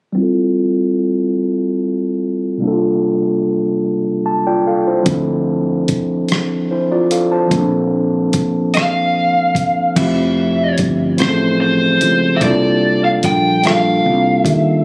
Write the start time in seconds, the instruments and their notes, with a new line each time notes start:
0.13 tine electric piano G3 C4
0.17 tine electric piano E4 F4
0.22 tine electric piano A4
2.58 tine electric piano C3 G3
2.62 tine electric piano A#3 D4 E4
2.67 tine electric piano A4
2.72 tine electric piano F4
4.26 tine electric piano A5
4.47 tine electric piano F4 D5 G5
4.67 tine electric piano A4 F5
4.87 tine electric piano E4 C5
5.03 tine electric piano F3 C4, kick, closed hi-hat
5.07 fretless electric bass D2, tine electric piano D4 E4
5.13 tine electric piano A4
5.88 kick, closed hi-hat
6.28 cross-stick, closed hi-hat
6.71 tine electric piano E4 C5
6.92 tine electric piano F4 D5
7.11 tine electric piano A4 F5, closed hi-hat
7.32 tine electric piano C5 A5
7.47 tine electric piano F3 A#3, kick
7.51 fretless electric bass A#1, tine electric piano C4 D4, closed hi-hat
7.57 tine electric piano A4
8.33 kick, closed hi-hat
8.74 lead electric guitar F5, cross-stick, closed hi-hat
9.55 kick, closed hi-hat
9.96 fretless electric bass F1, tine electric piano F3 A3 C4 E4, lead electric guitar E5, kick, closed hi-hat, crash
10.00 tine electric piano G4
10.78 fretless electric bass G1, kick, closed hi-hat
11.18 fretless electric bass A1, tine electric piano F3 A3 C4 E4, lead electric guitar C5, closed hi-hat
11.22 tine electric piano G#4, cross-stick
11.29 tine electric piano A4
11.61 lead electric guitar C5
12.01 fretless electric bass C#2, closed hi-hat
12.36 tine electric piano G3, lead electric guitar E5
12.41 fretless electric bass C2, tine electric piano A#3 D4 F4 A4, lead electric guitar D5, kick, closed hi-hat
13.05 lead electric guitar F5
13.23 fretless electric bass A#1, lead electric guitar G5, kick, closed hi-hat
13.63 tine electric piano G3 A#3 D4 F4, lead electric guitar F5, closed hi-hat
13.67 tine electric piano A4, cross-stick
14.06 fretless electric bass C2
14.43 fretless electric bass D#2, lead electric guitar E5, kick, closed hi-hat